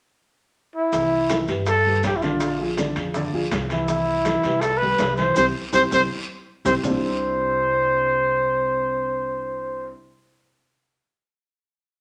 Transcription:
0.76 E4
0.92 C2 E3 E4 E5, high bongo, high conga, high timbale, long guiro, maracas
1.12 high bongo, high conga
1.29 E3 E4 E5, high bongo, high conga, high timbale, low timbale, short guiro, maracas
1.48 G2 G3 G4 B4, high timbale, short guiro, maracas
1.66 A4, high bongo, high conga, high timbale, long guiro, maracas
1.86 G3 G4 B4, high bongo, high conga
2.03 A#1 G4, high bongo, low bongo, high conga, high timbale, low timbale, short guiro, maracas
2.16 E4
2.22 D3 D4 F4 D5, high bongo, high conga, short guiro, maracas
2.40 high bongo, high conga, high timbale, long guiro, maracas
2.59 F3 F4 G#4, high bongo, high conga
2.77 D3 D4 D5, high bongo, high conga, high timbale, low timbale, short guiro, maracas
2.96 F2 F3 F4 G#4, high bongo, high conga, high timbale, short guiro, maracas
3.14 D3 D4 D5, high bongo, high conga, long guiro, maracas
3.33 D2 F3 F4 G#4, high conga
3.51 C2, high bongo, low bongo, high conga, high timbale, low timbale, short guiro, maracas
3.70 E3 E4 E5, high bongo, high timbale, short guiro, maracas
3.88 E3 E4 E5, high bongo, high conga, high timbale, long guiro, maracas
4.07 high bongo, high conga
4.25 E3 E4 E5, high bongo, high conga, high timbale, low timbale, short guiro, maracas
4.43 C2 G3 G4 B4, high timbale, short guiro, maracas
4.61 A4, high bongo, high conga, high timbale, long guiro, maracas
4.77 B4
4.81 G3 G4 B4, high bongo, high conga
4.98 C2, high bongo, low bongo, high conga, high timbale, low timbale, short guiro, maracas
5.17 E3 E4 C5 E5, high bongo, high conga, short guiro, maracas
5.36 C2 C4 E4 G4 C5, low bongo, high conga, high timbale, long guiro, maracas
5.73 C2 C4 E4 G4 C5, low bongo, high conga, high timbale, long guiro, maracas
5.91 C2 C4 E4 G4 C5, low bongo, high conga, high timbale, long guiro, maracas
6.65 C2 C4 E4 G4 C5, low bongo, high conga, high timbale, long guiro, maracas
6.84 C2 C3 G3 C4 D4 E4 C5, low bongo, low conga, low timbale, long guiro, maracas

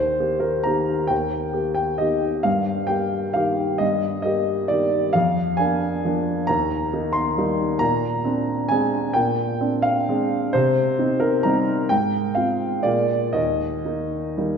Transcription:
Already playing: D#2 C5
0.19 A#3 G4
0.40 A#4
0.63 D#3 A#3 G4 A#5
1.07 D#2 G5
1.53 A#3 G4
1.75 G5
1.98 D#3 A#3 G4 D#5
2.43 G2 F5
2.87 A#3 G4 G5
3.33 D#3 A#3 G4 F5
3.78 G2 D#5
4.22 A#3 G4 D#5
4.68 D#3 A#3 G4 D5
5.13 F2 F5
5.57 A#3 D4 G#5
6.05 F3 A#3 D4
6.47 D#2 A#5
6.93 A#3 D#4
7.13 C6
7.38 G3 A#3 D#4
7.79 A#2 A#5
8.25 C4 D4
8.69 G#3 C4 D4 G#5
9.14 A#2 G5
9.61 C4 D4
9.82 F5
10.09 G#3 C4 D4
10.53 C3 C5
10.99 C4 D#4
11.20 A#4
11.43 G3 C4 D#4 A#5
11.89 G#2 G5
12.35 C4 F4 F5
12.83 A#2 G#3 A#3 F4 D5
13.33 D#2 D#5
13.85 A#3 D#4
14.37 G3 A#3 D#4

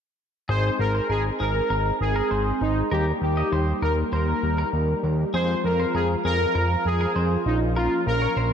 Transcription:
0.49 G#1 G#3 C4 D#4 G#4 C5
0.79 G#1 A#4
0.95 C5
1.10 G#1 G#4 A#4
1.40 G#1 G#4 A#4
1.70 G#1 A#4
2.00 G#1 G#4
2.16 A#4
2.31 G#1 C5
2.61 G#1 D#4
2.91 D#2 G3 A#3 D#4 G4 A#4
3.22 D#2 G4
3.37 D#5
3.52 D#2 C5
3.82 D#2 A#4
4.13 D#2 A#4 C5
4.43 D#2
4.58 A#4
4.73 D#2
5.03 D#2
5.34 F2 F3 G#3 C4 F4 G#4 C5
5.64 F2 A#4
5.80 C5
5.95 F2 G#4 A#4
6.25 F2 G#4 A#4
6.55 F2 A#4
6.85 F2 G#4
7.01 A#4
7.16 F2 C5
7.46 A#1 F3 A#3 C#4 D#4 F4
7.76 F4 A#4
8.06 A#1 A#4
8.22 C#5
8.37 A#1 C5

